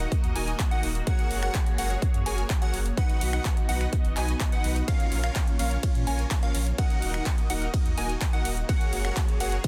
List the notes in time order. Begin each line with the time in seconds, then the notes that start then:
Already playing: A#3 D#4 F#4 D#5
0.12 kick, closed hi-hat
0.24 D#2, closed hi-hat
0.36 D#1 D#4 F#4 A#4 D#5 G#5, open hi-hat
0.48 closed hi-hat
0.59 finger snap, kick, clap, closed hi-hat
0.71 D#4 F#4 A#4 D#5 F#5, closed hi-hat
0.83 D#1, open hi-hat
0.95 closed hi-hat
1.07 F#4 G#4 A#4 C#5 F#5, kick, closed hi-hat
1.19 closed hi-hat
1.31 F#1, open hi-hat
1.43 F#4 G#4 A#4 C#5 F#5, finger snap, closed hi-hat
1.54 kick, clap, closed hi-hat
1.66 closed hi-hat
1.78 F#1 F#4 G#4 A#4 C#5 F#5, open hi-hat
1.90 closed hi-hat
2.02 kick, closed hi-hat
2.14 F#2, closed hi-hat
2.26 F#1 F#4 G#4 A#4 C#5 G#5, open hi-hat
2.38 closed hi-hat
2.50 finger snap, kick, clap, closed hi-hat
2.62 F#4 G#4 A#4 C#5 F#5, closed hi-hat
2.74 F#1, open hi-hat
2.86 closed hi-hat
2.97 B3 D#4 F#4 B4 D#5 F#5, kick, closed hi-hat
3.09 closed hi-hat
3.21 B1, open hi-hat
3.33 D#4 F#4 B4 D#5 F#5, finger snap
3.45 kick, clap, closed hi-hat
3.57 closed hi-hat
3.69 B1 D#4 F#4 B4 D#5 F#5, open hi-hat
3.81 finger snap, closed hi-hat
3.93 kick, closed hi-hat
4.05 F#1, closed hi-hat
4.17 B1 D#4 F#4 B4 D#5 G#5, clap, open hi-hat
4.29 closed hi-hat
4.40 finger snap, kick, clap, closed hi-hat
4.52 D#4 F#4 B4 D#5 F#5, closed hi-hat
4.64 B1, open hi-hat
4.76 closed hi-hat
4.88 A#3 C#4 F4 A#4 C#5 F5, kick, closed hi-hat, ride
5.00 closed hi-hat
5.12 A#1, open hi-hat
5.24 C#4 F4 A#4 C#5 F5, finger snap, closed hi-hat
5.36 kick, clap, closed hi-hat, ride
5.47 closed hi-hat
5.59 A#1 C#4 F4 A#4 C#5 F5, open hi-hat
5.71 closed hi-hat
5.83 kick, closed hi-hat, ride
5.95 A#2, closed hi-hat
6.07 A#1 C#4 F4 A#4 C#5 G#5, open hi-hat
6.19 closed hi-hat
6.31 finger snap, kick, clap, closed hi-hat, ride
6.43 C#4 F4 A#4 C#5 F5, closed hi-hat
6.55 A#1, open hi-hat
6.67 closed hi-hat
6.78 D#4 F#4 A#4 D#5 F#5, kick, closed hi-hat, ride
6.90 closed hi-hat
7.02 D#1, open hi-hat
7.14 D#4 F#4 A#4 D#5 F#5, finger snap, closed hi-hat
7.26 kick, clap, closed hi-hat, ride
7.38 closed hi-hat
7.50 D#1 D#4 F#4 A#4 D#5 F#5, open hi-hat
7.62 closed hi-hat
7.74 kick, closed hi-hat, ride
7.86 D#2, closed hi-hat
7.97 D#1 D#4 F#4 A#4 D#5 G#5, open hi-hat
8.09 closed hi-hat
8.21 finger snap, kick, clap, closed hi-hat, ride
8.33 D#4 F#4 A#4 D#5 F#5, closed hi-hat
8.45 D#1, open hi-hat
8.57 closed hi-hat
8.69 F#4 G#4 A#4 C#5 F#5, kick, closed hi-hat, ride
8.81 closed hi-hat
8.93 F#1, open hi-hat
9.05 F#4 G#4 A#4 C#5 F#5, finger snap, closed hi-hat
9.17 kick, clap, closed hi-hat, ride
9.28 closed hi-hat
9.40 F#1 F#4 G#4 A#4 C#5 F#5, open hi-hat
9.52 closed hi-hat
9.64 kick, closed hi-hat, ride